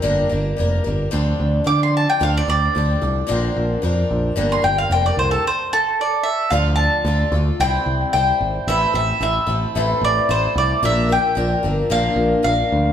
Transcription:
<<
  \new Staff \with { instrumentName = "Mandolin" } { \time 4/4 \key d \minor \tempo 4 = 111 << { r2. d'''16 c'''16 a''16 g''16 | f''16 d''16 d''2. r8 | r16 c'''16 g''16 f''16 g''16 d''16 c''16 a'16 c''8 a'4. | r1 |
r1 | r1 | } \\ { r1 | r1 | r2. d''8 e''8 | f''8 a''4 r8 g''4 g''4 |
e''8 e''8 e''4. d''8 c''8 d''8 | e''8 g''4 r8 f''4 f''4 | } >> }
  \new Staff \with { instrumentName = "Twelve-string acoustic guitar" } { \time 4/4 \key d \minor <g, d g bes d' bes'>8 <g bes d' bes'>8 <g bes d' bes'>8 <g bes d' bes'>8 <d f c' d' a'>4 <f c' d' a'>4 | <d f c' d' a'>8 <c' d' a'>8 <f c' d' a'>8 <c' d' a'>8 <bes, d f c' d' bes'>4 <f c' d' bes'>4 | <g, d g bes d' bes'>8 <g bes d' bes'>8 <g bes d' bes'>4 r2 | <d f d' f' a'>4 <f d' f' a'>8 <d' f' a'>8 <c g c' e' c''>4 <g c' e' c''>4 |
<a, e a c' e' a'>8 <a c' e' a'>8 <a c' e' a'>8 <a c' e' a'>8 <a, e a c' e' a'>4 <a c' e' a'>4 | <bes, d f bes d' bes'>8 <f bes d' bes'>8 <f bes d' bes'>8 <f bes d' bes'>8 <bes, d f bes d' bes'>4 <f bes d' bes'>4 | }
  \new Staff \with { instrumentName = "Picked electric bass" } { \clef bass \time 4/4 \key d \minor g,,8 g,,8 f,,8 g,,8 d,8 d,8 d4 | d,8 d,8 d,8 c,8 bes,,8 bes,,8 f,8 bes,,8 | g,,8 g,,8 f,,8 c,8 r2 | d,4 d,8 d,8 c,8 c,8 c,8 gis,,8 |
a,,8 a,,8 a,,8 a,,8 a,,8 a,,8 a,,8 c,8 | bes,,4 bes,,8 g,,8 bes,,8 bes,,8 bes,,8 d,8 | }
>>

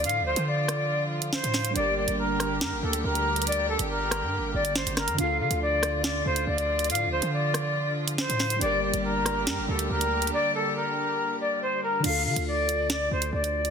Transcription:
<<
  \new Staff \with { instrumentName = "Flute" } { \time 4/4 \key d \minor \tempo 4 = 140 f''8 c''8 d''2 c''4 | d''8 d''8 bes'4 bes'8 a'8 bes'4 | d''8 a'8 bes'4. d''8 c''8 bes'8 | f''8 f''8 d''4 d''8 c''8 d''4 |
f''8 c''8 d''2 c''4 | d''8 d''8 bes'4 bes'8 a'8 bes'4 | d''8 a'8 bes'4. d''8 c''8 bes'8 | f''8 f''8 d''4 d''8 c''8 d''4 | }
  \new Staff \with { instrumentName = "Synth keys" } { \time 4/4 \key d \minor <d d' f' a'>1 | <g d' g' bes'>1~ | <g d' g' bes'>1 | <d d' f' a'>1~ |
<d d' f' a'>1 | <g d' g' bes'>1~ | <g d' g' bes'>1 | <d d' f' a'>1 | }
  \new Staff \with { instrumentName = "String section" } { \time 4/4 \key d \minor << { <f f'>1 | <bes g'>1~ | <bes g'>1 | <f f'>1~ |
<f f'>1 | <g bes g'>1~ | <g bes g'>1 | r1 | } \\ { d1~ | d1~ | d1~ | d1~ |
d1 | d1~ | d1 | r1 | } >> }
  \new Staff \with { instrumentName = "808-style bass" } { \clef bass \time 4/4 \key d \minor a,16. d,16. d2~ d8 a,8. | g,,8. g,,4~ g,,16 g,16 g,,16 d,8 d,4~ | d,8. g,,4 g,16. g,,16. g,,8. g,,8 g,16 | d,8 d16 d,4.~ d,16 d,8 d,4 |
a,16. d,16. d2~ d8 a,8. | g,,8. g,,4~ g,,16 g,16 g,,16 d,8 d,4 | r1 | d,8 d16 d,4.~ d,16 d,8 d,4 | }
  \new DrumStaff \with { instrumentName = "Drums" } \drummode { \time 4/4 hh32 hh8 r32 hh16 r8 <hh ss>8 r8. hh16 sn16 hh16 <hho sn>16 hh16 | hh8. hh16 r8 <hh ss>8 <hh sn>8. hh16 r16 hh8 hh32 hh32 | hh32 hh8 r32 hh16 r8 <hh ss>8 r8. hh16 sn16 hh16 <hh ss sn>16 hh16 | hh8. hh16 r8 <hh ss>8 <hh sn>8. hh16 r16 hh8 hh32 hh32 |
hh32 hh8 r32 hh16 r8 <hh ss>8 r8. hh16 sn16 hh16 <hho sn>16 hh16 | hh8. hh16 r8 <hh ss>8 <hh sn>8. hh16 r16 hh8 hh32 hh32 | r4 r4 r4 r4 | <cymc hh>8. hh16 r8 hh8 <hh sn>8. hh16 r16 hh8 hh16 | }
>>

